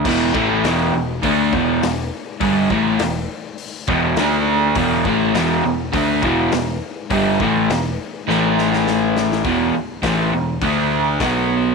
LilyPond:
<<
  \new Staff \with { instrumentName = "Overdriven electric guitar" } { \clef bass \time 4/4 \key d \lydian \tempo 4 = 102 <e, b, e>8 <a, e a>8 <e, b, e>8 <e, b,>8 <d a d'>8 <e, b, e>8 <e, b,>8 r8 | <g, d g>8 <a, e a>8 <e, b,>8 r4 <e, b, e>8 <d a d'>4 | <e, b, e>8 <a, e a>8 <e, b, e>8 <e, b,>8 <d a d'>8 <e, b, e>8 <e, b,>8 r8 | <g, d g>8 <a, e a>8 <e, b,>8 r8 <a, e a>2 |
<e, b, e>8 r8 <a, e a>8 <e, b,>8 <d a d'>4 <b, fis b>4 | }
  \new Staff \with { instrumentName = "Picked electric bass" } { \clef bass \time 4/4 \key d \lydian e,,8 a,,8 e,,8 e,,8 d,8 e,,8 e,,8 r8 | g,,8 a,,8 e,,8 r4 e,,8 d,4 | e,,8 a,,8 e,,8 e,,8 d,8 e,,8 e,,8 r8 | g,,8 a,,8 e,,8 r8 a,,2 |
e,,8 r8 a,,8 e,,8 d,4 b,,4 | }
  \new DrumStaff \with { instrumentName = "Drums" } \drummode { \time 4/4 <cymc bd>8 bd8 <hho sn>4 <hho bd>8 bd8 <hho sn>4 | <hho bd>8 bd8 <hho sn>4 hho8 bd8 <hho sn>4 | <hho bd>8 bd8 <hho sn>4 <hho bd>8 bd8 <hho sn>4 | <hho bd>8 bd8 <hho sn>4 sn8 sn16 sn16 sn8 sn16 sn16 |
<hho bd>4 <hho bd sn>4 <hho bd>4 <hho bd sn>4 | }
>>